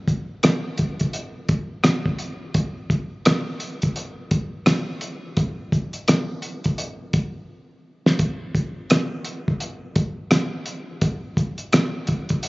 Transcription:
0.08 kick, closed hi-hat
0.43 cross-stick, snare, closed hi-hat
0.78 kick, closed hi-hat
0.99 kick, closed hi-hat
1.13 closed hi-hat
1.49 kick, closed hi-hat
1.84 cross-stick, snare, closed hi-hat
2.06 kick
2.19 closed hi-hat
2.54 kick, closed hi-hat
2.90 kick, closed hi-hat
3.25 cross-stick, snare, closed hi-hat
3.60 closed hi-hat
3.82 kick, closed hi-hat
3.96 closed hi-hat
4.31 kick, closed hi-hat
4.66 cross-stick, snare, closed hi-hat
5.01 closed hi-hat
5.37 kick, closed hi-hat
5.72 kick, closed hi-hat
5.93 closed hi-hat
6.08 cross-stick, snare, closed hi-hat
6.42 closed hi-hat
6.64 kick, closed hi-hat
6.78 closed hi-hat
7.13 kick, closed hi-hat
8.06 snare
8.19 kick, closed hi-hat
8.55 kick, closed hi-hat
8.90 cross-stick, snare, closed hi-hat
9.25 closed hi-hat
9.48 kick
9.60 closed hi-hat
9.96 kick, closed hi-hat
10.31 cross-stick, snare, closed hi-hat
10.66 closed hi-hat
11.01 kick, closed hi-hat
11.37 kick, closed hi-hat
11.58 closed hi-hat
11.73 cross-stick, snare, closed hi-hat
12.07 kick, closed hi-hat
12.29 kick, closed hi-hat
12.43 closed hi-hat

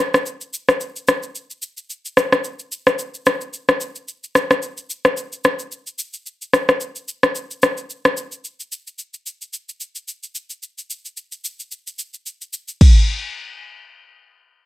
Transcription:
0.14 cross-stick, shaker
0.26 shaker
0.41 shaker
0.54 shaker
0.69 cross-stick, shaker
0.81 shaker
0.96 shaker
1.08 cross-stick, shaker
1.23 shaker
1.35 shaker
1.51 shaker
1.62 shaker
1.77 shaker
1.90 shaker
2.06 shaker
2.17 cross-stick, shaker
2.33 cross-stick, shaker
2.44 shaker
2.59 shaker
2.72 shaker
2.87 cross-stick, shaker
2.99 shaker
3.14 shaker
3.26 cross-stick, shaker
3.41 shaker
3.54 shaker
3.69 cross-stick, shaker
3.81 shaker
3.95 shaker
4.08 shaker
4.24 shaker
4.35 cross-stick, shaker
4.51 cross-stick, shaker
4.62 shaker
4.77 shaker
4.90 shaker
5.05 cross-stick, shaker
5.17 shaker
5.33 shaker
5.44 cross-stick, shaker
5.59 shaker
5.72 shaker
5.87 shaker
5.99 shaker
6.14 shaker
6.26 shaker
6.42 shaker
6.53 cross-stick, shaker
6.69 cross-stick, shaker
6.81 shaker
6.96 shaker
7.08 shaker
7.23 cross-stick, shaker
7.35 shaker
7.51 shaker
7.63 cross-stick, shaker
7.77 shaker
7.90 shaker
8.05 cross-stick, shaker
8.17 shaker
8.32 shaker
8.45 shaker
8.60 shaker
8.72 shaker
8.87 shaker
8.99 shaker
9.14 shaker
9.27 shaker
9.42 shaker
9.54 shaker
9.69 shaker
9.81 shaker
9.96 shaker
10.08 shaker
10.23 shaker
10.35 shaker
10.50 shaker
10.63 shaker
10.78 shaker
10.90 shaker
11.05 shaker
11.17 shaker
11.32 shaker
11.45 shaker
11.60 shaker
11.72 shaker
11.87 shaker
11.99 shaker
12.14 shaker
12.26 shaker
12.42 shaker
12.53 shaker
12.68 shaker
12.81 kick, crash

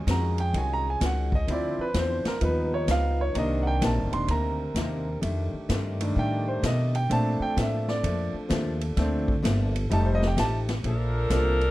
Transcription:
Already playing: G#3 C#4 F4 G#4
0.07 F2 D#3 G#3 C#4 F#4 A#5, kick, snare, hi-hat pedal, ride
0.38 G5, ride
0.53 C2 D#3 G#3 C#4 F#4, kick, ride
0.58 G#5
0.74 A#5
0.90 G#5
1.01 C#2 D#3 G#3 C#4 F#4, kick, snare, hi-hat pedal, ride
1.06 F#5
1.32 D#5, kick
1.47 D2 D3 F3 C4 D4 E4 C5, kick, ride
1.53 D5
1.78 B4, muted upright bass stroke
1.94 E2 D3 F3 C4 E4, kick, snare, hi-hat pedal, ride
1.99 C5
2.25 A#4, muted upright bass stroke, snare, ride
2.41 D#2 G2 F3 G3 B3 D#4 F4 B4, kick, ride
2.74 C#5
2.87 C#2 G2 F3 B3 D#4 F5, kick, snare, hi-hat pedal, ride
3.21 C#5
3.34 C2 C3 D#3 A#3 C4 D4 A#4, kick, ride
3.38 D#5
3.63 F#5
3.67 G5
3.81 A#1 C3 D#3 A#3 D4 A5, kick, snare, hi-hat pedal, ride
3.98 G1
4.12 D#1 D#3 A#3 D4 C6, ride
4.28 D2 C3 D#3 A#3 D4 A#5, kick, ride
4.75 D#2 C3 D#3 A#3 D4, kick, snare, hi-hat pedal, ride
5.21 F2 D#3 A3 D4 G4, kick, ride
5.53 muted upright bass stroke
5.69 F2 G2 D#3 A3 D4, kick, snare, hi-hat pedal, ride
6.01 D#3 G3 A3 D4, ride
6.16 F2 A2 D#3 A3 D4 G5, kick
6.48 C5
6.62 F2 B2 D#3 A3 D4 D#5, kick, snare, hi-hat pedal, ride
6.95 G5, ride
7.09 A#2 F3 A3 C4 D4 A4 A5, kick, ride
7.40 G5, muted upright bass stroke
7.56 A2 A#2 F3 A3 D4 E5, kick, snare, hi-hat pedal, ride
7.88 D5, snare
8.03 F2 A#2 F3 A3 D4, kick, ride
8.34 muted upright bass stroke
8.49 D#2 A#2 F3 A3 D4, kick, snare, hi-hat pedal, ride
8.81 ride
8.97 D2 A#2 F3 A3 C4 D4, kick, snare, ride
9.28 kick
9.43 G1 A#2 F3 A3 D4, kick, snare, hi-hat pedal, ride
9.76 ride
9.90 F1 F3 G3 A3 D#4 G4 A5, kick, ride
10.05 C5
10.15 D#5
10.22 snare
10.27 G5
10.37 A1 F3 A3 D#4 G4 A5, kick, snare, hi-hat pedal, ride
10.69 snare, ride
10.83 A#1 A#2 F3 A3 D4 A4 A#4, kick, ride
11.30 C2 A#2 F3 A3 A#3 C4 D4 A4, kick, snare, hi-hat pedal, ride
11.61 ride

